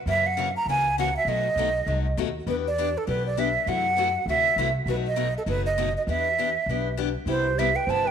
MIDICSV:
0, 0, Header, 1, 5, 480
1, 0, Start_track
1, 0, Key_signature, 1, "minor"
1, 0, Tempo, 300300
1, 102, Time_signature, 4, 2, 24, 8
1, 12961, End_track
2, 0, Start_track
2, 0, Title_t, "Flute"
2, 0, Program_c, 0, 73
2, 136, Note_on_c, 0, 76, 101
2, 424, Note_on_c, 0, 78, 102
2, 448, Note_off_c, 0, 76, 0
2, 883, Note_off_c, 0, 78, 0
2, 901, Note_on_c, 0, 82, 89
2, 1068, Note_off_c, 0, 82, 0
2, 1112, Note_on_c, 0, 80, 93
2, 1535, Note_off_c, 0, 80, 0
2, 1580, Note_on_c, 0, 78, 88
2, 1823, Note_off_c, 0, 78, 0
2, 1865, Note_on_c, 0, 76, 86
2, 2050, Note_on_c, 0, 75, 96
2, 2074, Note_off_c, 0, 76, 0
2, 3474, Note_off_c, 0, 75, 0
2, 3989, Note_on_c, 0, 71, 88
2, 4085, Note_off_c, 0, 71, 0
2, 4272, Note_on_c, 0, 74, 89
2, 4756, Note_on_c, 0, 69, 80
2, 4780, Note_off_c, 0, 74, 0
2, 4915, Note_off_c, 0, 69, 0
2, 4924, Note_on_c, 0, 71, 87
2, 5174, Note_off_c, 0, 71, 0
2, 5208, Note_on_c, 0, 74, 86
2, 5419, Note_on_c, 0, 76, 85
2, 5443, Note_off_c, 0, 74, 0
2, 5889, Note_on_c, 0, 78, 101
2, 5913, Note_off_c, 0, 76, 0
2, 6834, Note_off_c, 0, 78, 0
2, 6855, Note_on_c, 0, 76, 103
2, 7546, Note_off_c, 0, 76, 0
2, 7822, Note_on_c, 0, 71, 85
2, 7918, Note_off_c, 0, 71, 0
2, 8108, Note_on_c, 0, 75, 96
2, 8532, Note_off_c, 0, 75, 0
2, 8595, Note_on_c, 0, 69, 75
2, 8672, Note_off_c, 0, 69, 0
2, 8774, Note_on_c, 0, 71, 94
2, 9019, Note_off_c, 0, 71, 0
2, 9044, Note_on_c, 0, 75, 90
2, 9480, Note_off_c, 0, 75, 0
2, 9543, Note_on_c, 0, 75, 80
2, 9623, Note_off_c, 0, 75, 0
2, 9734, Note_on_c, 0, 76, 89
2, 11093, Note_off_c, 0, 76, 0
2, 11655, Note_on_c, 0, 72, 93
2, 12125, Note_on_c, 0, 76, 99
2, 12149, Note_off_c, 0, 72, 0
2, 12400, Note_on_c, 0, 79, 89
2, 12424, Note_off_c, 0, 76, 0
2, 12622, Note_on_c, 0, 81, 107
2, 12646, Note_off_c, 0, 79, 0
2, 12901, Note_on_c, 0, 79, 97
2, 12925, Note_off_c, 0, 81, 0
2, 12961, Note_off_c, 0, 79, 0
2, 12961, End_track
3, 0, Start_track
3, 0, Title_t, "Clarinet"
3, 0, Program_c, 1, 71
3, 11611, Note_on_c, 1, 64, 73
3, 12071, Note_on_c, 1, 67, 79
3, 12095, Note_off_c, 1, 64, 0
3, 12396, Note_on_c, 1, 71, 74
3, 12420, Note_off_c, 1, 67, 0
3, 12576, Note_on_c, 1, 72, 79
3, 12600, Note_off_c, 1, 71, 0
3, 12869, Note_on_c, 1, 71, 88
3, 12893, Note_off_c, 1, 72, 0
3, 12961, Note_off_c, 1, 71, 0
3, 12961, End_track
4, 0, Start_track
4, 0, Title_t, "Steel-string acoustic guitar"
4, 0, Program_c, 2, 25
4, 112, Note_on_c, 2, 49, 67
4, 121, Note_on_c, 2, 52, 68
4, 125, Note_on_c, 2, 61, 63
4, 134, Note_on_c, 2, 58, 64
4, 141, Note_on_c, 2, 66, 63
4, 415, Note_off_c, 2, 49, 0
4, 420, Note_off_c, 2, 52, 0
4, 421, Note_off_c, 2, 61, 0
4, 426, Note_off_c, 2, 58, 0
4, 430, Note_off_c, 2, 66, 0
4, 589, Note_on_c, 2, 49, 87
4, 597, Note_on_c, 2, 52, 87
4, 611, Note_on_c, 2, 58, 83
4, 614, Note_on_c, 2, 66, 86
4, 617, Note_on_c, 2, 61, 97
4, 755, Note_off_c, 2, 49, 0
4, 758, Note_off_c, 2, 52, 0
4, 766, Note_off_c, 2, 58, 0
4, 767, Note_off_c, 2, 66, 0
4, 769, Note_off_c, 2, 61, 0
4, 1103, Note_on_c, 2, 49, 57
4, 1107, Note_on_c, 2, 61, 63
4, 1110, Note_on_c, 2, 52, 58
4, 1116, Note_on_c, 2, 66, 66
4, 1120, Note_on_c, 2, 58, 66
4, 1390, Note_off_c, 2, 49, 0
4, 1392, Note_off_c, 2, 61, 0
4, 1394, Note_off_c, 2, 52, 0
4, 1397, Note_off_c, 2, 66, 0
4, 1399, Note_off_c, 2, 58, 0
4, 1568, Note_on_c, 2, 49, 81
4, 1570, Note_on_c, 2, 52, 88
4, 1585, Note_on_c, 2, 58, 85
4, 1586, Note_on_c, 2, 61, 89
4, 1591, Note_on_c, 2, 66, 91
4, 1724, Note_off_c, 2, 49, 0
4, 1725, Note_off_c, 2, 52, 0
4, 1732, Note_off_c, 2, 58, 0
4, 1733, Note_off_c, 2, 61, 0
4, 1735, Note_off_c, 2, 66, 0
4, 2032, Note_on_c, 2, 47, 57
4, 2042, Note_on_c, 2, 54, 60
4, 2045, Note_on_c, 2, 63, 56
4, 2051, Note_on_c, 2, 57, 60
4, 2055, Note_on_c, 2, 66, 69
4, 2335, Note_off_c, 2, 47, 0
4, 2340, Note_off_c, 2, 54, 0
4, 2341, Note_off_c, 2, 63, 0
4, 2344, Note_off_c, 2, 57, 0
4, 2346, Note_off_c, 2, 66, 0
4, 2517, Note_on_c, 2, 47, 81
4, 2524, Note_on_c, 2, 54, 75
4, 2540, Note_on_c, 2, 57, 82
4, 2541, Note_on_c, 2, 63, 92
4, 2545, Note_on_c, 2, 66, 86
4, 2678, Note_off_c, 2, 47, 0
4, 2681, Note_off_c, 2, 54, 0
4, 2689, Note_off_c, 2, 57, 0
4, 2690, Note_off_c, 2, 63, 0
4, 2692, Note_off_c, 2, 66, 0
4, 2986, Note_on_c, 2, 47, 52
4, 2995, Note_on_c, 2, 54, 54
4, 2997, Note_on_c, 2, 63, 61
4, 2999, Note_on_c, 2, 66, 59
4, 3004, Note_on_c, 2, 57, 57
4, 3291, Note_off_c, 2, 47, 0
4, 3296, Note_off_c, 2, 54, 0
4, 3297, Note_off_c, 2, 63, 0
4, 3298, Note_off_c, 2, 66, 0
4, 3300, Note_off_c, 2, 57, 0
4, 3475, Note_on_c, 2, 47, 81
4, 3485, Note_on_c, 2, 63, 83
4, 3486, Note_on_c, 2, 57, 86
4, 3491, Note_on_c, 2, 54, 83
4, 3497, Note_on_c, 2, 66, 99
4, 3637, Note_off_c, 2, 47, 0
4, 3642, Note_off_c, 2, 57, 0
4, 3642, Note_off_c, 2, 63, 0
4, 3645, Note_off_c, 2, 54, 0
4, 3648, Note_off_c, 2, 66, 0
4, 3945, Note_on_c, 2, 52, 57
4, 3955, Note_on_c, 2, 59, 60
4, 3955, Note_on_c, 2, 62, 55
4, 3963, Note_on_c, 2, 67, 66
4, 4251, Note_off_c, 2, 52, 0
4, 4256, Note_off_c, 2, 59, 0
4, 4256, Note_off_c, 2, 62, 0
4, 4260, Note_off_c, 2, 67, 0
4, 4448, Note_on_c, 2, 59, 81
4, 4451, Note_on_c, 2, 52, 79
4, 4459, Note_on_c, 2, 62, 84
4, 4468, Note_on_c, 2, 67, 91
4, 4603, Note_off_c, 2, 59, 0
4, 4605, Note_off_c, 2, 52, 0
4, 4609, Note_off_c, 2, 62, 0
4, 4613, Note_off_c, 2, 67, 0
4, 4908, Note_on_c, 2, 52, 61
4, 4911, Note_on_c, 2, 59, 60
4, 4928, Note_on_c, 2, 62, 63
4, 4928, Note_on_c, 2, 67, 60
4, 5212, Note_off_c, 2, 52, 0
4, 5214, Note_off_c, 2, 59, 0
4, 5222, Note_off_c, 2, 62, 0
4, 5222, Note_off_c, 2, 67, 0
4, 5391, Note_on_c, 2, 52, 79
4, 5397, Note_on_c, 2, 62, 92
4, 5404, Note_on_c, 2, 59, 80
4, 5405, Note_on_c, 2, 67, 96
4, 5555, Note_off_c, 2, 52, 0
4, 5557, Note_off_c, 2, 62, 0
4, 5561, Note_off_c, 2, 59, 0
4, 5561, Note_off_c, 2, 67, 0
4, 5866, Note_on_c, 2, 48, 58
4, 5871, Note_on_c, 2, 52, 56
4, 5873, Note_on_c, 2, 57, 66
4, 5884, Note_on_c, 2, 66, 71
4, 5890, Note_on_c, 2, 64, 69
4, 6171, Note_off_c, 2, 48, 0
4, 6174, Note_off_c, 2, 52, 0
4, 6174, Note_off_c, 2, 57, 0
4, 6180, Note_off_c, 2, 66, 0
4, 6183, Note_off_c, 2, 64, 0
4, 6338, Note_on_c, 2, 48, 81
4, 6347, Note_on_c, 2, 52, 84
4, 6360, Note_on_c, 2, 64, 90
4, 6364, Note_on_c, 2, 57, 88
4, 6371, Note_on_c, 2, 66, 97
4, 6508, Note_off_c, 2, 48, 0
4, 6512, Note_off_c, 2, 52, 0
4, 6519, Note_off_c, 2, 64, 0
4, 6521, Note_off_c, 2, 57, 0
4, 6524, Note_off_c, 2, 66, 0
4, 6854, Note_on_c, 2, 48, 55
4, 6854, Note_on_c, 2, 52, 59
4, 6864, Note_on_c, 2, 57, 64
4, 6864, Note_on_c, 2, 64, 62
4, 6865, Note_on_c, 2, 66, 66
4, 7145, Note_off_c, 2, 48, 0
4, 7145, Note_off_c, 2, 52, 0
4, 7150, Note_off_c, 2, 57, 0
4, 7150, Note_off_c, 2, 64, 0
4, 7150, Note_off_c, 2, 66, 0
4, 7318, Note_on_c, 2, 48, 85
4, 7322, Note_on_c, 2, 52, 90
4, 7332, Note_on_c, 2, 64, 89
4, 7341, Note_on_c, 2, 66, 101
4, 7342, Note_on_c, 2, 57, 85
4, 7478, Note_off_c, 2, 48, 0
4, 7480, Note_off_c, 2, 52, 0
4, 7485, Note_off_c, 2, 64, 0
4, 7489, Note_off_c, 2, 66, 0
4, 7490, Note_off_c, 2, 57, 0
4, 7784, Note_on_c, 2, 47, 59
4, 7802, Note_on_c, 2, 54, 61
4, 7803, Note_on_c, 2, 66, 69
4, 7805, Note_on_c, 2, 63, 71
4, 7806, Note_on_c, 2, 57, 61
4, 8090, Note_off_c, 2, 47, 0
4, 8099, Note_off_c, 2, 54, 0
4, 8099, Note_off_c, 2, 66, 0
4, 8101, Note_off_c, 2, 57, 0
4, 8101, Note_off_c, 2, 63, 0
4, 8248, Note_on_c, 2, 54, 83
4, 8253, Note_on_c, 2, 47, 81
4, 8255, Note_on_c, 2, 57, 94
4, 8267, Note_on_c, 2, 63, 83
4, 8273, Note_on_c, 2, 66, 85
4, 8423, Note_off_c, 2, 54, 0
4, 8425, Note_off_c, 2, 47, 0
4, 8427, Note_off_c, 2, 57, 0
4, 8433, Note_off_c, 2, 63, 0
4, 8436, Note_off_c, 2, 66, 0
4, 8733, Note_on_c, 2, 47, 58
4, 8740, Note_on_c, 2, 54, 56
4, 8750, Note_on_c, 2, 63, 65
4, 8755, Note_on_c, 2, 66, 65
4, 8756, Note_on_c, 2, 57, 59
4, 9045, Note_off_c, 2, 47, 0
4, 9048, Note_off_c, 2, 54, 0
4, 9053, Note_off_c, 2, 63, 0
4, 9056, Note_off_c, 2, 57, 0
4, 9056, Note_off_c, 2, 66, 0
4, 9234, Note_on_c, 2, 57, 84
4, 9235, Note_on_c, 2, 47, 83
4, 9237, Note_on_c, 2, 54, 85
4, 9243, Note_on_c, 2, 66, 95
4, 9251, Note_on_c, 2, 63, 87
4, 9396, Note_off_c, 2, 57, 0
4, 9397, Note_off_c, 2, 47, 0
4, 9398, Note_off_c, 2, 54, 0
4, 9401, Note_off_c, 2, 66, 0
4, 9405, Note_off_c, 2, 63, 0
4, 9717, Note_on_c, 2, 52, 58
4, 9728, Note_on_c, 2, 62, 64
4, 9732, Note_on_c, 2, 67, 66
4, 9734, Note_on_c, 2, 59, 67
4, 10017, Note_off_c, 2, 52, 0
4, 10022, Note_off_c, 2, 62, 0
4, 10024, Note_off_c, 2, 67, 0
4, 10025, Note_off_c, 2, 59, 0
4, 10205, Note_on_c, 2, 52, 75
4, 10216, Note_on_c, 2, 62, 78
4, 10219, Note_on_c, 2, 59, 81
4, 10220, Note_on_c, 2, 67, 95
4, 10362, Note_off_c, 2, 52, 0
4, 10367, Note_off_c, 2, 62, 0
4, 10369, Note_off_c, 2, 59, 0
4, 10369, Note_off_c, 2, 67, 0
4, 10697, Note_on_c, 2, 52, 54
4, 10705, Note_on_c, 2, 59, 60
4, 10716, Note_on_c, 2, 67, 67
4, 10717, Note_on_c, 2, 62, 65
4, 10987, Note_off_c, 2, 52, 0
4, 10991, Note_off_c, 2, 59, 0
4, 10997, Note_off_c, 2, 62, 0
4, 10997, Note_off_c, 2, 67, 0
4, 11147, Note_on_c, 2, 59, 94
4, 11153, Note_on_c, 2, 52, 82
4, 11161, Note_on_c, 2, 67, 88
4, 11164, Note_on_c, 2, 62, 92
4, 11313, Note_off_c, 2, 59, 0
4, 11316, Note_off_c, 2, 52, 0
4, 11320, Note_off_c, 2, 67, 0
4, 11321, Note_off_c, 2, 62, 0
4, 11618, Note_on_c, 2, 48, 58
4, 11626, Note_on_c, 2, 64, 64
4, 11630, Note_on_c, 2, 55, 58
4, 11631, Note_on_c, 2, 67, 65
4, 11633, Note_on_c, 2, 59, 62
4, 11928, Note_off_c, 2, 48, 0
4, 11932, Note_off_c, 2, 64, 0
4, 11934, Note_off_c, 2, 55, 0
4, 11934, Note_off_c, 2, 67, 0
4, 11935, Note_off_c, 2, 59, 0
4, 12125, Note_on_c, 2, 48, 83
4, 12130, Note_on_c, 2, 64, 96
4, 12132, Note_on_c, 2, 55, 87
4, 12133, Note_on_c, 2, 59, 85
4, 12138, Note_on_c, 2, 67, 97
4, 12282, Note_off_c, 2, 48, 0
4, 12285, Note_off_c, 2, 55, 0
4, 12285, Note_off_c, 2, 64, 0
4, 12286, Note_off_c, 2, 59, 0
4, 12288, Note_off_c, 2, 67, 0
4, 12607, Note_on_c, 2, 48, 61
4, 12609, Note_on_c, 2, 55, 57
4, 12625, Note_on_c, 2, 59, 60
4, 12627, Note_on_c, 2, 64, 58
4, 12636, Note_on_c, 2, 67, 65
4, 12902, Note_off_c, 2, 48, 0
4, 12903, Note_off_c, 2, 55, 0
4, 12911, Note_off_c, 2, 59, 0
4, 12912, Note_off_c, 2, 64, 0
4, 12917, Note_off_c, 2, 67, 0
4, 12961, End_track
5, 0, Start_track
5, 0, Title_t, "Upright bass"
5, 0, Program_c, 3, 32
5, 92, Note_on_c, 3, 42, 79
5, 863, Note_off_c, 3, 42, 0
5, 1047, Note_on_c, 3, 37, 71
5, 1820, Note_off_c, 3, 37, 0
5, 1995, Note_on_c, 3, 35, 75
5, 2389, Note_off_c, 3, 35, 0
5, 2487, Note_on_c, 3, 35, 73
5, 2900, Note_off_c, 3, 35, 0
5, 2980, Note_on_c, 3, 36, 71
5, 3388, Note_off_c, 3, 36, 0
5, 3473, Note_on_c, 3, 39, 78
5, 3875, Note_off_c, 3, 39, 0
5, 3939, Note_on_c, 3, 40, 79
5, 4707, Note_off_c, 3, 40, 0
5, 4915, Note_on_c, 3, 35, 77
5, 5677, Note_off_c, 3, 35, 0
5, 5856, Note_on_c, 3, 42, 77
5, 6625, Note_off_c, 3, 42, 0
5, 6806, Note_on_c, 3, 38, 80
5, 7219, Note_off_c, 3, 38, 0
5, 7292, Note_on_c, 3, 36, 76
5, 7703, Note_off_c, 3, 36, 0
5, 7762, Note_on_c, 3, 35, 78
5, 8537, Note_off_c, 3, 35, 0
5, 8733, Note_on_c, 3, 30, 73
5, 9504, Note_off_c, 3, 30, 0
5, 9701, Note_on_c, 3, 40, 80
5, 10468, Note_off_c, 3, 40, 0
5, 10650, Note_on_c, 3, 35, 76
5, 11422, Note_off_c, 3, 35, 0
5, 11601, Note_on_c, 3, 36, 76
5, 12377, Note_off_c, 3, 36, 0
5, 12579, Note_on_c, 3, 31, 78
5, 12961, Note_off_c, 3, 31, 0
5, 12961, End_track
0, 0, End_of_file